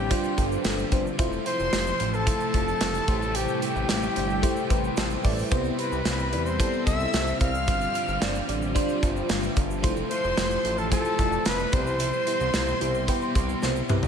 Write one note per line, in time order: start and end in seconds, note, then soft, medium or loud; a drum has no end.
0.00 0.13 A1 medium
0.00 1.21 G2 medium
0.00 0.11 D3 soft
0.00 1.17 D3 medium
0.00 0.10 G3 medium
0.00 0.11 G3 soft
0.00 1.15 G3 medium
0.00 1.17 C4 medium
0.00 0.10 D4 medium
0.00 0.11 F4 medium
0.00 1.17 F4 medium
0.00 0.88 G4 medium
0.00 1.21 B4 medium
0.00 0.11 C5 loud
0.00 0.88 G5 medium
0.09 1.18 G2 medium
0.09 1.20 D3 medium
0.09 0.34 G3 loud
0.09 0.34 D4 loud
0.09 0.34 F4 loud
0.09 0.35 C5 loud
0.09 kick medium
0.09 closed hi-hat loud
0.09 shaker medium
0.15 1.20 G3 medium
0.24 shaker medium
0.37 0.57 G1 loud
0.37 0.61 G3 medium
0.37 0.61 D4 medium
0.37 0.62 F4 medium
0.37 0.62 A4 medium
0.37 kick medium
0.37 closed hi-hat medium
0.37 shaker soft
0.52 shaker soft
0.64 0.84 G1 loud
0.64 0.88 G3 medium
0.64 0.88 D4 medium
0.64 0.88 F4 medium
0.64 0.89 A4 medium
0.64 snare loud
0.64 closed hi-hat medium
0.64 tambourine medium
0.64 shaker medium
0.79 shaker medium
0.91 1.11 G1 medium
0.91 1.15 G3 medium
0.91 1.15 D4 medium
0.91 1.16 F4 medium
0.91 1.16 C5 loud
0.91 kick medium
0.91 closed hi-hat medium
0.91 shaker soft
1.06 shaker medium
1.18 1.39 F1 loud
1.18 1.46 F2 medium
1.18 7.64 C3 medium
1.18 1.47 C3 medium
1.18 3.07 F3 medium
1.18 1.45 F3 loud
1.18 1.42 A3 loud
1.18 5.48 A3 medium
1.18 1.42 E4 loud
1.18 5.48 E4 medium
1.18 1.43 F4 loud
1.18 1.43 C5 loud
1.18 kick loud
1.18 closed hi-hat loud
1.18 shaker medium
1.32 shaker medium
1.45 2.27 C3 soft
1.45 2.27 F3 medium
1.45 1.69 A3 medium
1.45 1.69 E4 medium
1.45 1.70 F4 medium
1.45 1.70 C5 medium
1.45 2.16 C5 loud
1.45 2.10 C6 loud
1.45 closed hi-hat medium
1.59 1.69 F1 loud
1.59 shaker medium
1.72 1.93 F1 loud
1.72 1.96 A3 medium
1.72 1.97 E4 medium
1.72 1.97 F4 medium
1.72 1.97 G4 medium
1.72 snare loud
1.72 closed hi-hat medium
1.72 tambourine medium
1.72 shaker medium
1.87 shaker medium
1.99 2.29 A1 medium
1.99 2.23 A3 medium
1.99 2.24 E4 medium
1.99 2.24 F4 medium
1.99 2.24 C5 medium
1.99 closed hi-hat medium
2.14 3.37 A4 loud
2.14 3.36 A5 medium
2.14 shaker soft
2.26 3.08 F2 medium
2.26 3.09 C3 medium
2.26 3.08 F3 medium
2.26 2.50 A3 loud
2.26 2.51 E4 medium
2.26 2.51 F4 medium
2.26 2.51 C5 loud
2.26 kick medium
2.26 closed hi-hat loud
2.26 shaker medium
2.40 shaker medium
2.54 2.74 F1 loud
2.54 2.77 A3 medium
2.54 2.78 E4 medium
2.54 2.78 F4 medium
2.54 2.78 C5 medium
2.54 kick medium
2.54 closed hi-hat medium
2.54 shaker soft
2.68 shaker soft
2.81 3.01 F1 medium
2.81 3.04 A3 medium
2.81 3.05 E4 medium
2.81 3.05 F4 medium
2.81 3.05 C5 medium
2.81 snare loud
2.81 closed hi-hat medium
2.81 tambourine medium
2.81 shaker medium
2.94 shaker medium
3.07 3.47 A1 medium
3.07 3.85 A2 medium
3.07 3.63 A2 medium
3.07 3.64 E3 medium
3.07 5.49 G3 medium
3.07 3.55 A3 loud
3.07 3.60 A3 medium
3.07 3.55 E4 medium
3.07 3.55 G4 medium
3.07 3.56 C5 loud
3.07 kick loud
3.07 closed hi-hat medium
3.07 shaker soft
3.22 shaker medium
3.35 3.62 G4 loud
3.35 3.61 G5 medium
3.35 closed hi-hat loud
3.35 shaker medium
3.48 shaker medium
3.62 4.44 E3 soft
3.62 4.43 A3 medium
3.62 3.86 A3 medium
3.62 3.86 E4 medium
3.62 3.86 G4 medium
3.62 5.21 G4 medium
3.62 3.86 C5 medium
3.62 5.20 G5 medium
3.62 closed hi-hat medium
3.76 3.86 A1 loud
3.76 shaker soft
3.89 4.09 A1 loud
3.89 4.13 A3 medium
3.89 4.13 E4 medium
3.89 4.13 G4 medium
3.89 4.13 C5 medium
3.89 snare loud
3.89 closed hi-hat medium
3.89 tambourine medium
3.89 shaker medium
4.03 shaker medium
4.16 4.46 G1 medium
4.16 4.40 A3 medium
4.16 4.40 E4 medium
4.16 4.40 G4 medium
4.16 4.40 C5 medium
4.16 closed hi-hat medium
4.30 shaker soft
4.42 5.51 A2 medium
4.42 5.52 E3 medium
4.42 4.66 A3 loud
4.42 4.67 E4 loud
4.42 4.67 G4 loud
4.42 4.67 C5 loud
4.42 kick medium
4.42 closed hi-hat loud
4.42 shaker medium
4.47 5.52 A3 medium
4.56 shaker medium
4.70 4.90 A1 loud
4.70 4.94 A3 medium
4.70 4.94 E4 medium
4.70 4.94 G4 medium
4.70 4.94 B4 loud
4.70 4.95 C6 medium
4.70 kick medium
4.70 closed hi-hat medium
4.70 shaker medium
4.84 shaker soft
4.96 5.17 A1 medium
4.96 5.21 A3 medium
4.96 5.21 E4 medium
4.96 5.21 G4 medium
4.96 5.21 A4 loud
4.96 5.22 G5 medium
4.96 snare loud
4.96 closed hi-hat medium
4.96 tambourine medium
4.96 shaker medium
5.10 shaker medium
5.23 5.44 A1 medium
5.23 5.47 A3 medium
5.23 5.48 E4 medium
5.23 5.48 G4 medium
5.23 5.48 D5 loud
5.23 5.49 E5 medium
5.23 kick medium
5.23 open hi-hat medium
5.23 shaker soft
5.38 shaker medium
5.51 5.71 C2 loud
5.51 5.78 C3 medium
5.51 6.28 C3 medium
5.51 9.80 G3 medium
5.51 5.79 G3 medium
5.51 5.75 B3 loud
5.51 7.65 C4 medium
5.51 5.77 C4 loud
5.51 5.75 E4 loud
5.51 7.66 E4 medium
5.51 5.75 G4 loud
5.51 5.75 C5 loud
5.51 kick loud
5.51 closed hi-hat loud
5.51 shaker medium
5.64 shaker medium
5.77 6.61 G3 soft
5.77 6.01 B3 medium
5.77 6.63 C4 medium
5.77 6.02 E4 medium
5.77 6.02 G4 medium
5.77 6.47 B4 medium
5.77 6.02 C5 medium
5.77 6.42 B5 medium
5.77 closed hi-hat medium
5.92 6.02 C2 medium
5.92 shaker soft
6.05 6.34 C2 loud
6.05 6.29 B3 medium
6.05 6.29 E4 medium
6.05 6.29 G4 medium
6.05 6.29 C5 medium
6.05 snare loud
6.05 closed hi-hat medium
6.05 tambourine medium
6.05 shaker medium
6.19 shaker medium
6.32 6.62 E2 loud
6.32 6.56 B3 medium
6.32 6.56 E4 medium
6.32 6.56 G4 medium
6.32 6.56 D5 medium
6.32 closed hi-hat medium
6.46 6.85 C5 medium
6.46 6.86 C6 medium
6.46 shaker soft
6.58 7.67 C3 medium
6.58 7.69 G3 medium
6.58 6.83 B3 loud
6.58 6.83 E4 medium
6.58 6.83 G4 medium
6.58 6.83 A4 loud
6.58 kick medium
6.58 closed hi-hat loud
6.58 shaker medium
6.64 7.71 C4 medium
6.73 shaker medium
6.86 7.06 C2 loud
6.86 7.10 B3 medium
6.86 7.10 E4 medium
6.86 7.10 G4 medium
6.86 7.10 C5 medium
6.86 7.37 E5 loud
6.86 7.36 E6 medium
6.86 kick medium
6.86 closed hi-hat medium
6.86 shaker soft
7.00 shaker soft
7.13 7.33 C2 loud
7.13 7.37 B3 medium
7.13 7.37 E4 medium
7.13 7.37 G4 medium
7.13 7.37 C5 medium
7.13 snare loud
7.13 closed hi-hat medium
7.13 tambourine medium
7.13 shaker medium
7.27 shaker soft
7.40 7.69 C2 loud
7.40 7.64 B3 medium
7.40 7.64 E4 medium
7.40 7.64 G4 medium
7.40 7.64 C5 medium
7.40 8.45 F5 loud
7.40 8.44 F6 medium
7.40 kick loud
7.40 closed hi-hat medium
7.40 shaker soft
7.55 shaker medium
7.67 7.87 G1 loud
7.67 7.95 G2 medium
7.67 8.45 G2 medium
7.67 9.82 D3 medium
7.67 7.95 D3 medium
7.67 7.91 G3 loud
7.67 7.93 G3 medium
7.67 9.82 C4 medium
7.67 7.91 D4 medium
7.67 9.82 F4 medium
7.67 7.91 F4 medium
7.67 7.91 C5 loud
7.67 kick loud
7.67 closed hi-hat loud
7.67 shaker medium
7.81 shaker medium
7.93 8.76 D3 soft
7.93 8.18 G3 medium
7.93 8.76 G3 medium
7.93 8.18 D4 medium
7.93 8.18 F4 medium
7.93 8.18 C5 medium
7.93 closed hi-hat medium
8.08 8.18 G1 loud
8.08 shaker soft
8.20 8.41 G1 loud
8.20 8.45 G3 medium
8.20 8.45 D4 medium
8.20 8.45 F4 medium
8.20 8.45 D5 medium
8.20 snare loud
8.20 closed hi-hat medium
8.20 tambourine medium
8.20 shaker medium
8.35 shaker medium
8.48 8.78 A1 medium
8.48 8.72 G3 medium
8.48 8.72 D4 medium
8.48 8.72 F4 medium
8.48 8.72 D5 loud
8.48 closed hi-hat medium
8.62 shaker soft
8.74 9.83 G2 medium
8.74 9.84 D3 medium
8.74 8.99 G3 loud
8.74 8.99 D4 loud
8.74 8.99 F4 loud
8.74 8.99 C5 loud
8.74 kick medium
8.74 closed hi-hat loud
8.74 shaker medium
8.80 9.85 G3 medium
8.89 shaker medium
9.02 9.22 G1 loud
9.02 9.16 E5 medium
9.02 9.15 A5 medium
9.02 kick medium
9.02 closed hi-hat medium
9.02 shaker soft
9.16 9.29 D5 medium
9.16 9.29 G5 medium
9.16 shaker soft
9.29 9.49 G1 medium
9.29 9.43 C5 medium
9.29 9.43 F5 medium
9.29 snare loud
9.29 closed hi-hat medium
9.29 tambourine medium
9.29 shaker medium
9.43 9.56 B4 medium
9.43 9.56 E5 medium
9.43 shaker medium
9.56 9.85 G1 medium
9.56 9.70 A4 medium
9.56 9.69 D5 medium
9.56 kick medium
9.56 closed hi-hat medium
9.56 shaker medium
9.70 9.96 G4 medium
9.70 9.82 C5 medium
9.70 shaker medium
9.82 10.03 F1 loud
9.82 10.11 F2 medium
9.82 10.11 C3 medium
9.82 11.71 F3 medium
9.82 10.10 F3 loud
9.82 10.07 A3 loud
9.82 11.71 A3 medium
9.82 10.07 E4 loud
9.82 14.08 E4 medium
9.82 10.07 F4 loud
9.82 10.07 C5 loud
9.82 kick loud
9.82 closed hi-hat loud
9.82 shaker medium
9.96 shaker medium
10.10 10.92 C3 soft
10.10 10.92 F3 medium
10.10 10.34 A3 medium
10.10 10.34 E4 medium
10.10 10.34 F4 medium
10.10 10.80 C5 loud
10.10 10.35 C5 medium
10.10 10.75 C6 loud
10.10 closed hi-hat medium
10.24 10.34 F1 loud
10.24 shaker soft
10.36 10.57 F1 loud
10.36 10.61 A3 medium
10.36 10.61 E4 medium
10.36 10.61 F4 medium
10.36 10.61 G4 medium
10.36 snare loud
10.36 closed hi-hat medium
10.36 tambourine medium
10.36 shaker medium
10.51 shaker medium
10.64 10.94 A1 loud
10.64 10.88 A3 medium
10.64 10.88 E4 medium
10.64 10.88 F4 medium
10.64 10.89 C5 medium
10.64 closed hi-hat medium
10.78 10.92 A4 medium
10.78 10.91 A5 medium
10.78 shaker soft
10.91 11.73 F2 medium
10.91 11.73 C3 medium
10.91 11.73 F3 medium
10.91 11.15 A3 loud
10.91 11.15 E4 medium
10.91 11.16 F4 medium
10.91 11.48 A4 loud
10.91 11.16 C5 loud
10.91 11.42 A5 medium
10.91 kick medium
10.91 closed hi-hat loud
10.91 shaker medium
11.05 shaker medium
11.18 11.39 F1 loud
11.18 11.42 A3 medium
11.18 11.42 E4 medium
11.18 11.43 F4 medium
11.18 11.43 D5 medium
11.18 kick medium
11.18 closed hi-hat medium
11.18 shaker soft
11.32 shaker soft
11.45 11.66 F1 medium
11.45 11.69 A3 medium
11.45 11.69 E4 medium
11.45 11.70 F4 medium
11.45 11.75 B4 loud
11.45 11.70 C5 medium
11.45 11.73 B5 medium
11.45 snare loud
11.45 closed hi-hat medium
11.45 tambourine medium
11.45 shaker medium
11.59 shaker medium
11.72 12.12 C2 loud
11.72 12.20 B2 medium
11.72 12.50 C3 medium
11.72 12.28 C3 medium
11.72 14.08 G3 medium
11.72 12.29 G3 medium
11.72 12.20 E4 medium
11.72 12.20 G4 medium
11.72 12.20 C5 medium
11.72 13.63 C5 loud
11.72 13.63 C6 medium
11.72 kick loud
11.72 closed hi-hat medium
11.72 shaker soft
11.87 shaker medium
11.99 closed hi-hat loud
11.99 shaker medium
12.13 shaker medium
12.26 13.09 G3 soft
12.26 12.50 B3 medium
12.26 13.12 C4 medium
12.26 12.51 E4 medium
12.26 12.51 G4 medium
12.26 12.51 C5 medium
12.26 closed hi-hat medium
12.40 12.50 C2 loud
12.40 shaker medium
12.53 12.74 C2 loud
12.53 12.77 B3 medium
12.53 12.77 E4 medium
12.53 12.78 G4 medium
12.53 12.78 C5 medium
12.53 snare loud
12.53 closed hi-hat medium
12.53 tambourine medium
12.53 shaker medium
12.67 shaker medium
12.81 13.11 C2 medium
12.81 13.04 B3 medium
12.81 13.05 E4 medium
12.81 13.05 G4 medium
12.81 13.05 C5 medium
12.81 closed hi-hat medium
12.94 shaker soft
13.07 14.08 C3 medium
13.07 14.08 G3 medium
13.07 13.32 B3 loud
13.07 13.32 E4 loud
13.07 13.32 G4 loud
13.07 13.32 C5 loud
13.07 kick medium
13.07 closed hi-hat loud
13.07 shaker medium
13.12 14.08 C4 medium
13.21 shaker medium
13.35 13.55 C2 loud
13.35 13.59 B3 medium
13.35 13.59 E4 medium
13.35 13.59 G4 medium
13.35 13.59 C5 medium
13.35 kick medium
13.35 closed hi-hat medium
13.35 shaker soft
13.49 shaker soft
13.62 13.82 C2 medium
13.62 13.86 B3 medium
13.62 13.86 E4 medium
13.62 13.86 G4 medium
13.62 13.86 C5 loud
13.62 snare medium
13.62 shaker medium
13.76 shaker medium
13.88 14.08 C2 medium
13.88 14.08 B3 medium
13.88 14.08 E4 medium
13.88 14.08 G4 medium
13.88 14.08 B4 loud
13.88 mid tom medium
13.88 shaker soft
14.03 floor tom medium
14.03 shaker medium